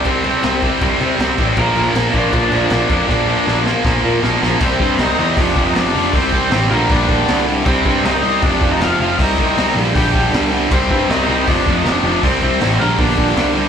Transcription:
<<
  \new Staff \with { instrumentName = "Overdriven electric guitar" } { \time 4/4 \key bes \mixolydian \tempo 4 = 158 <c' c''>4. r2 r8 | <bes bes'>4. <d' d''>4. <d' d''>4 | <d' d''>4. r2 r8 | \key c \minor <c' c''>4 <ees' ees''>4 <d' d''>8. <ees' ees''>16 <d' d''>4 |
<c' c''>4 r8 <bes bes'>8 <d' d''>4. r8 | <c' c''>4 <ees' ees''>4 <d' d''>8. <ees' ees''>16 <f' f''>8 <f' f''>8 | <ees' ees''>4. r8 <g' g''>4 r4 | <c' c''>4 <ees' ees''>4 <d' d''>8. <ees' ees''>16 <d' d''>4 |
<c' c''>4 r8 <bes bes'>8 <d' d''>4. r8 | }
  \new Staff \with { instrumentName = "Distorted electric guitar" } { \clef bass \time 4/4 \key bes \mixolydian <c g c'>8 <c g c'>8 <c g c'>8 <c g c'>8 <c g c'>8 <c g c'>8 <c g c'>8 <c g c'>8 | <bes, f bes>8 <bes, f bes>8 <bes, f bes>8 <bes, f bes>8 <bes, f bes>8 <bes, f bes>8 <bes, f bes>8 <bes, f bes>8 | <bes, f bes>8 <bes, f bes>8 <bes, f bes>8 <bes, f bes>8 <bes, f bes>8 <bes, f bes>8 <bes, f bes>8 <bes, f bes>8 | \key c \minor <c g c'>8 <c g c'>8 <c g c'>8 <c g c'>8 <f, c f>8 <f, c f>8 <f, c f>8 <f, c f>8 |
<c g c'>8 <c g c'>8 <c g c'>8 <g, d g>8 <g, d g>8 <g, d g>8 <g, d g>8 <g, d g>8 | <c g c'>8 <c g c'>8 <c g c'>8 <c g c'>8 <f, c f>8 <f, c f>8 <f, c f>8 <f, c f>8 | <c g c'>8 <c g c'>8 <c g c'>8 <g, d g>8 <g, d g>8 <g, d g>8 <g, d g>8 <g, d g>8 | <c g c'>8 <c g c'>8 <c g c'>8 <c g c'>8 <f, c f>8 <f, c f>8 <f, c f>8 <f, c f>8 |
<c g c'>8 <c g c'>8 <c g c'>8 <g, d g>8 <g, d g>8 <g, d g>8 <g, d g>8 <g, d g>8 | }
  \new Staff \with { instrumentName = "Distorted electric guitar" } { \clef bass \time 4/4 \key bes \mixolydian <c g c'>8 <c g c'>8 <c g c'>8 <c g c'>8 <c g c'>8 <c g c'>8 <c g c'>8 <c g c'>8 | <bes, f bes>8 <bes, f bes>8 <bes, f bes>8 <bes, f bes>8 <bes, f bes>8 <bes, f bes>8 <bes, f bes>8 <bes, f bes>8 | <bes, f bes>8 <bes, f bes>8 <bes, f bes>8 <bes, f bes>8 <bes, f bes>8 <bes, f bes>8 <bes, f bes>8 <bes, f bes>8 | \key c \minor <c g c'>8 <c g c'>8 <c g c'>8 <c g c'>8 <f, c f>8 <f, c f>8 <f, c f>8 <f, c f>8 |
<c g c'>8 <c g c'>8 <c g c'>8 <g, d g>8 <g, d g>8 <g, d g>8 <g, d g>8 <g, d g>8 | <c g c'>8 <c g c'>8 <c g c'>8 <c g c'>8 <f, c f>8 <f, c f>8 <f, c f>8 <f, c f>8 | <c g c'>8 <c g c'>8 <c g c'>8 <g, d g>8 <g, d g>8 <g, d g>8 <g, d g>8 <g, d g>8 | <c g c'>8 <c g c'>8 <c g c'>8 <c g c'>8 <f, c f>8 <f, c f>8 <f, c f>8 <f, c f>8 |
<c g c'>8 <c g c'>8 <c g c'>8 <g, d g>8 <g, d g>8 <g, d g>8 <g, d g>8 <g, d g>8 | }
  \new Staff \with { instrumentName = "Picked electric bass" } { \clef bass \time 4/4 \key bes \mixolydian c,4 c,4 c,8 c8 c,8 a,,8 | bes,,8 bes,,8 bes,,8 bes,,8 bes,,8 bes,,8 bes,,8 f,8 | bes,,4 bes,,4 bes,,8 bes,8 bes,,8 bes,,8 | \key c \minor c,8 g,8 c,8 e,8 f,,8 f,,8 f,,8 f,,8 |
c,8 c,8 a,,8 bes,,8 bes,,4 c,4 | c,8 g,8 c,8 c,8 f,,8 f,,8 f,,8 f,,8 | c,8 c,8 c,8 bes,,8 bes,,4 c,4 | c,8 g,8 c,8 c,8 f,,8 f,,8 f,,8 f,,8 |
c,8 c,8 a,,8 bes,,8 bes,,4 c,4 | }
  \new DrumStaff \with { instrumentName = "Drums" } \drummode { \time 4/4 <cymc bd>8 cymc8 <cymc sn>8 <cymc bd>8 <cymc bd>8 cymc8 <cymc sn>8 <cymc bd>8 | <cymc bd>8 cymc8 <cymc sn>8 <cymc bd>8 <cymc bd>8 cymc8 <cymc sn>8 <cymc bd>8 | <bd sn>4 sn8 sn8 <bd sn>4 sn8 sn8 | <cymc bd>8 bd8 <hho sn>4 <hho bd>8 bd8 <hho sn>4 |
<hho bd>8 bd8 <hho sn>4 <hho bd>8 bd8 <hho sn>4 | <cymc bd>8 bd8 <hho sn>4 <hho bd>8 bd8 <hho sn>4 | <hho bd>8 bd8 <hho sn>4 <hho bd>8 bd8 <hho sn>4 | <cymc bd>8 bd8 <hho sn>4 <hho bd>8 bd8 <hho sn>4 |
<hho bd>8 bd8 <hho sn>4 <hho bd>8 bd8 <hho sn>4 | }
>>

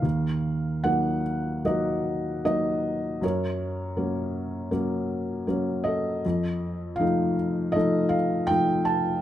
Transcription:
<<
  \new Staff \with { instrumentName = "Felt piano" } { \time 4/4 \key ges \major \tempo 4 = 79 << { f''4 ges''4 ees''4 ees''4 | des''2 r4. ees''8~ | ees''4 f''4 ees''8 f''8 g''8 a''8 | } \\ { bes'4. r8 ges'2 | bes'2 r4. a'8~ | a'4. r8 a'2 | } >> }
  \new Staff \with { instrumentName = "Felt piano" } { \time 4/4 \key ges \major ees,4 <ges bes ees'>4 <ges bes ees'>4 <ges bes ees'>4 | ges,4 <ges bes des'>4 <ges bes des'>4 <ges bes des'>4 | f,4 <f a ees'>4 <f a ees'>4 <f a ees'>4 | }
>>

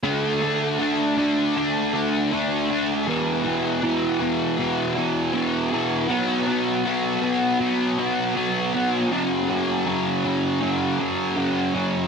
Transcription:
\new Staff \with { instrumentName = "Distorted electric guitar" } { \clef bass \time 4/4 \key d \major \tempo 4 = 80 <d a d'>8 <a d'>8 <d a d'>8 <a d'>8 <d a d'>8 <a d'>8 <d a d'>8 <a d'>8 | <e, b, e>8 <b, e>8 <e, b, e>8 <b, e>8 <e, b, e>8 <b, e>8 <e, b, e>8 <b, e>8 | <b, fis b>8 <fis b>8 <b, fis b>8 <fis b>8 <b, fis b>8 <fis b>8 <b, fis b>8 <fis b>8 | <fis, cis fis>8 <cis fis>8 <fis, cis fis>8 <cis fis>8 <fis, cis fis>8 <cis fis>8 <fis, cis fis>8 <cis fis>8 | }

